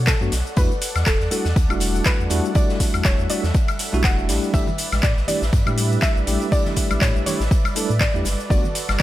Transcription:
Already playing: B2 A4 C#5 D5 F#5
0.07 A4, kick, snare, clap, closed hi-hat, shaker
0.21 F#2 F#3 A3 B3 D4 F#4, shaker
0.32 B1, snare, closed hi-hat, open hi-hat, shaker
0.47 shaker
0.56 E2 G3 A3 D4 E4 F#4 A4 B4 D5 F#5, kick, closed hi-hat, shaker
0.71 shaker
0.81 closed hi-hat, open hi-hat, shaker
0.96 E2, snare, high woodblock, shaker
1.06 E1 A4, kick, snare, clap, closed hi-hat, shaker
1.20 E2, snare, shaker
1.31 G3 A3 D4 E4 F#4 A4, closed hi-hat, open hi-hat, shaker
1.45 E2, snare, shaker
1.56 D2, kick, closed hi-hat, shaker
1.69 E1 G3 A3 D4 E4 F#4, high woodblock, shaker
1.80 closed hi-hat, open hi-hat, shaker
1.96 shaker
2.05 B4, kick, snare, clap, closed hi-hat, shaker
2.20 E2, shaker
2.30 E2 G3 A3 D4 E4 F#4, closed hi-hat, open hi-hat, shaker
2.45 shaker
2.54 G3 A3 D4 E4 F#4 D5 E5, kick, closed hi-hat, shaker
2.69 snare, shaker
2.80 kick, closed hi-hat, open hi-hat, shaker
2.94 E2, high woodblock, shaker
3.05 E1 C#5, kick, snare, clap, closed hi-hat, shaker
3.19 E2, shaker
3.29 G3 A3 D4 E4 F#4 D5, closed hi-hat, open hi-hat, shaker
3.44 E2, snare, shaker
3.54 kick, closed hi-hat, shaker
3.68 closed hi-hat, high woodblock, shaker
3.79 closed hi-hat, open hi-hat, shaker
3.93 B1 G3 A3 D4 E4 F#4, shaker
4.04 E1 F#5, kick, snare, clap, closed hi-hat, shaker
4.19 shaker
4.28 A1 G3 A3 D4 E4 G4 B4 D5 E5, snare, closed hi-hat, open hi-hat, shaker
4.43 shaker
4.53 A1 G3 A3 D4 E4 G4 E5, kick, closed hi-hat, shaker
4.67 low conga, shaker
4.78 closed hi-hat, open hi-hat, shaker
4.92 A1, snare, high conga, high woodblock, shaker
5.03 A2 D5, kick, snare, clap, closed hi-hat, shaker
5.17 A1, snare, shaker
5.28 G3 A3 D4 E4 G4 D5, closed hi-hat, open hi-hat, low conga, shaker
5.42 A1, snare, shaker
5.53 G2, kick, closed hi-hat, shaker
5.66 A2 G3 A3 D4 E4 G4, high conga, high woodblock, shaker
5.78 closed hi-hat, open hi-hat, shaker
5.92 shaker
6.02 E5, kick, snare, clap, closed hi-hat, shaker
6.16 A1, shaker
6.27 A1 G3 A3 D4 E4 G4, closed hi-hat, open hi-hat, high conga, shaker
6.42 shaker
6.51 G3 A3 D4 E4 G4 D5, kick, closed hi-hat, shaker
6.65 snare, low conga, shaker
6.76 kick, closed hi-hat, open hi-hat, shaker
6.91 A1, high conga, high woodblock, shaker
7.01 A2 C#5, kick, snare, clap, closed hi-hat, shaker
7.15 A1, shaker
7.26 G3 A3 D4 E4 G4 C#5, closed hi-hat, open hi-hat, low conga, shaker
7.40 A1, snare, shaker
7.51 kick, closed hi-hat, shaker
7.64 closed hi-hat, high conga, high woodblock, shaker
7.75 G3 A3 D4 E4 A4, closed hi-hat, open hi-hat, shaker
7.90 A2, shaker
8.01 D5, kick, snare, clap, closed hi-hat, shaker
8.14 E2 G3 A3 D4 E4 G4, shaker
8.25 G1 F#4 A4, snare, closed hi-hat, open hi-hat, high conga, shaker
8.40 shaker
8.50 G1 G3 A3 B3 D4 F#4 D5, kick, closed hi-hat, shaker
8.64 low conga, shaker
8.75 closed hi-hat, open hi-hat, shaker
8.89 G1, snare, high conga, high woodblock, shaker

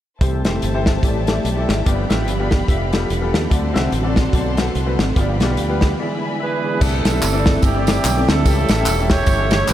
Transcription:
0.20 C2 C3 E3 G3 A3 C4 E4 G4 C5 E5 G5 A5, kick, closed hi-hat
0.45 F1 A3 E4 G4 C5, snare, closed hi-hat
0.62 G1, closed hi-hat
0.74 A3 E4 G4 C5
0.86 kick, snare, closed hi-hat
1.03 A1 A3 E4 G4 D5, kick, closed hi-hat
1.27 A3 E4 G4 D5, snare, closed hi-hat
1.45 B1, closed hi-hat
1.56 A3 E4 G4 D5
1.69 G#1, snare, closed hi-hat
1.85 G1 G2 F3 B3 D4 F4 G4 D5 F5 B5, kick, closed hi-hat
2.09 A1 B3 F4 G4 E5, snare, closed hi-hat
2.27 G1, closed hi-hat
2.39 B3 F4 G4 D5
2.51 kick, snare, closed hi-hat
2.68 F1 B3 F4 G4 E5, kick, closed hi-hat
2.92 B3 F4 G4 A4, snare, closed hi-hat
3.10 E1, closed hi-hat
3.21 B3 F4 G4 A4
3.34 D#2, snare, closed hi-hat
3.50 D2 D3 F#3 A3 C4 F#4 A4 D5 F#5 A5 C6, kick, closed hi-hat
3.73 C2 C4 F#4 A4 E5, snare, closed hi-hat
3.92 A1, closed hi-hat
4.03 C4 F#4 A4 D5
4.16 kick, snare, closed hi-hat
4.32 B1 C4 F#4 A4 D5, kick, closed hi-hat
4.57 C4 F#4 A4 B4, snare, closed hi-hat
4.75 C2, closed hi-hat
4.86 C4 F#4 A4 B4
4.99 G#1, snare, closed hi-hat
5.15 G1 G2 F3 G3 B3 F4 G4 D5 F5 G5 B5, kick, closed hi-hat
5.40 B1 B3 F4 G4 D5, snare, closed hi-hat
5.57 D2, closed hi-hat
5.69 B3 F4 G4 B4
5.81 kick, snare, closed hi-hat
5.98 E3 G#3 B3 E4 G#4 D5 E5 G#5 B5
6.23 D5 G#5
6.40 D4 G#4 B4 E5
6.64 G#4 D5
6.80 C2 C3 D3 G3 A3 C4 D4 E4 A4 D5, kick, crash, tambourine
7.05 B1, snare, ride, tambourine
7.12 C4 E4 A4 E5
7.22 G1, clap, ride, tambourine
7.33 C4 E4 A4 D5
7.46 kick, snare, ride, tambourine
7.62 G1 D4 E4 G4, kick, ride, tambourine
7.75 C4 E4 A4 D5
7.87 snare, ride, tambourine
8.04 B1, clap, ride, tambourine
8.17 C4 E4 A4 D5
8.28 D2 E4 A4, snare, ride, tambourine
8.45 C#2 C#3 E3 C#4 G4 A4 E5, kick, ride, tambourine
8.69 A1, snare, ride, tambourine
8.78 C#4 G4 A4 E5
8.86 E1, clap, ride, tambourine
8.99 C#4 G4 A4 E5
9.10 E4 G4 C#5, kick, snare, ride, tambourine
9.26 G1, kick, ride, tambourine
9.39 C#4 G4 A4 E5
9.51 snare, ride, tambourine
9.68 A1 E4 G4 B4, clap, ride, tambourine

